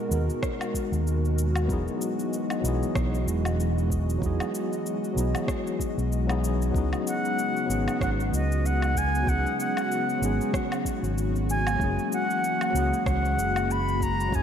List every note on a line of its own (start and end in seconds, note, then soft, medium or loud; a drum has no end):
0.00 1.66 B2 medium
0.00 0.07 G#3 medium
0.00 6.71 G#3 medium
0.00 0.09 B3 medium
0.00 0.11 D#4 medium
0.00 0.13 F#4 medium
0.00 6.71 F#4 medium
0.00 0.10 A#4 medium
0.00 1.66 A#4 medium
0.07 0.26 D#2 medium
0.07 1.64 G#3 medium
0.07 1.65 B3 medium
0.07 1.66 D#4 medium
0.12 1.67 F#4 medium
0.12 1.68 A#4 medium
0.12 cabasa medium
0.30 cabasa soft
0.43 kick loud
0.43 cross-stick medium
0.43 cabasa soft
0.61 cabasa soft
0.61 low woodblock medium
0.74 kick medium
0.74 cabasa medium
0.92 1.66 D#2 medium
0.92 cabasa soft
1.07 cabasa soft
1.25 cabasa soft
1.38 cabasa medium
1.56 cabasa soft
1.56 low woodblock medium
1.65 1.84 E1 medium
1.65 2.59 F#3 medium
1.65 2.60 B3 medium
1.65 2.61 D#4 medium
1.65 kick loud
1.70 6.71 E3 medium
1.70 2.62 E4 medium
1.70 2.63 G#4 loud
1.70 6.71 D#5 medium
1.70 cabasa soft
1.88 cabasa soft
2.01 cabasa medium
2.19 cabasa soft
2.33 cabasa soft
2.50 cabasa soft
2.50 low woodblock medium
2.60 2.79 B1 medium
2.60 4.17 F#3 medium
2.60 4.18 B3 medium
2.64 4.19 D#4 medium
2.64 4.20 E4 medium
2.64 cabasa medium
2.68 4.21 G#4 medium
2.83 cabasa soft
2.95 3.23 B1 medium
2.95 kick loud
2.95 cross-stick medium
2.95 cabasa soft
3.15 cabasa soft
3.27 4.18 E1 medium
3.27 cabasa medium
3.45 cabasa soft
3.45 low woodblock medium
3.60 cabasa soft
3.78 cabasa soft
3.90 kick medium
3.90 cabasa medium
4.10 cabasa soft
4.18 4.37 E1 medium
4.18 5.12 F#3 medium
4.18 5.13 B3 medium
4.18 kick loud
4.22 5.14 D#4 medium
4.22 5.15 E4 medium
4.22 5.15 G#4 medium
4.22 cabasa soft
4.40 cabasa soft
4.40 low woodblock medium
4.55 cabasa medium
4.73 cabasa soft
4.86 cabasa soft
5.04 cabasa soft
5.13 5.31 B1 medium
5.13 6.24 F#3 medium
5.13 6.25 B3 medium
5.13 6.26 D#4 medium
5.18 6.27 E4 medium
5.18 6.28 G#4 medium
5.18 cabasa medium
5.35 cabasa soft
5.35 low woodblock medium
5.48 kick loud
5.48 cross-stick medium
5.48 cabasa soft
5.67 cabasa soft
5.80 kick medium
5.80 cabasa medium
5.98 6.71 B1 medium
5.98 cabasa soft
6.12 cabasa soft
6.27 6.69 F#3 medium
6.27 6.71 B3 medium
6.27 6.71 D#4 medium
6.27 6.72 E4 medium
6.27 cabasa soft
6.27 low woodblock medium
6.31 6.72 G#4 medium
6.44 cabasa medium
6.62 cabasa soft
6.70 6.89 C#2 medium
6.70 11.76 C#3 medium
6.70 7.64 F#3 medium
6.70 7.65 B3 medium
6.70 7.66 C#4 medium
6.70 kick loud
6.75 14.43 G#3 medium
6.75 11.76 B3 medium
6.75 7.67 D#4 medium
6.75 14.43 F#4 medium
6.75 7.68 G#4 loud
6.75 cabasa soft
6.93 cabasa soft
6.93 low woodblock medium
7.07 7.98 F#5 loud
7.07 cabasa medium
7.25 cabasa soft
7.39 cabasa soft
7.57 cabasa soft
7.65 7.84 G#1 medium
7.65 9.22 F#3 medium
7.65 9.23 B3 medium
7.70 9.24 C#4 medium
7.70 9.25 D#4 medium
7.70 9.26 G#4 medium
7.70 cabasa medium
7.88 cabasa soft
7.88 low woodblock medium
8.01 8.28 G#1 medium
8.01 8.10 F#5 medium
8.01 kick loud
8.01 cross-stick medium
8.01 cabasa soft
8.20 cabasa soft
8.32 9.23 C#2 medium
8.32 8.67 D#5 medium
8.32 cabasa medium
8.52 cabasa soft
8.66 8.99 F#5 loud
8.66 cabasa soft
8.82 cabasa soft
8.82 low woodblock medium
8.96 9.30 G#5 loud
8.96 kick medium
8.96 cabasa medium
9.15 cabasa soft
9.23 10.17 F#3 medium
9.23 10.18 B3 medium
9.27 9.42 C#2 medium
9.27 10.19 C#4 medium
9.27 10.20 D#4 medium
9.27 10.21 G#4 medium
9.27 9.60 F#5 loud
9.27 kick loud
9.27 cabasa soft
9.46 cabasa soft
9.60 10.82 F#5 loud
9.60 cabasa medium
9.77 cabasa soft
9.77 low woodblock medium
9.92 cabasa soft
10.10 cabasa soft
10.18 10.37 G#1 medium
10.18 11.75 F#3 medium
10.18 11.76 B3 medium
10.18 11.77 C#4 medium
10.23 11.77 D#4 medium
10.23 11.79 G#4 medium
10.23 cabasa medium
10.41 cabasa soft
10.53 kick loud
10.53 cross-stick medium
10.53 cabasa soft
10.72 cabasa soft
10.72 low woodblock medium
10.85 kick medium
10.85 cabasa medium
11.03 11.76 G#1 medium
11.03 cabasa soft
11.18 cabasa soft
11.36 cabasa soft
11.50 12.09 G#5 medium
11.50 cabasa medium
11.67 cabasa soft
11.67 low woodblock medium
11.76 11.95 F#1 medium
11.76 12.69 F#3 medium
11.76 12.70 A#3 medium
11.76 kick loud
11.80 14.43 E3 medium
11.80 14.43 A#3 medium
11.80 12.71 C#4 medium
11.80 12.72 E4 medium
11.80 12.73 G#4 medium
11.80 cabasa soft
11.99 cabasa soft
12.12 13.03 F#5 loud
12.12 cabasa medium
12.30 cabasa soft
12.44 cabasa soft
12.61 cabasa soft
12.61 low woodblock medium
12.71 12.89 C#2 medium
12.71 14.27 F#3 medium
12.71 14.28 A#3 medium
12.71 14.29 C#4 medium
12.76 14.30 E4 medium
12.76 14.31 G#4 medium
12.76 cabasa medium
12.94 cabasa soft
13.06 13.33 C#2 medium
13.06 13.73 F#5 loud
13.06 kick loud
13.06 cross-stick medium
13.06 cabasa soft
13.25 cabasa soft
13.38 14.29 F#1 medium
13.38 cabasa medium
13.56 cabasa soft
13.56 low woodblock medium
13.71 14.04 B5 loud
13.71 cabasa soft
13.89 cabasa soft
14.01 14.37 A#5 loud
14.01 kick medium
14.01 cabasa medium
14.20 cabasa soft
14.28 14.43 F#1 loud
14.28 14.43 F#3 medium
14.28 14.43 A#3 medium
14.28 kick loud
14.32 14.43 C#4 medium
14.32 14.43 E4 medium
14.32 14.43 G#4 medium
14.32 14.43 G#5 loud
14.32 cabasa soft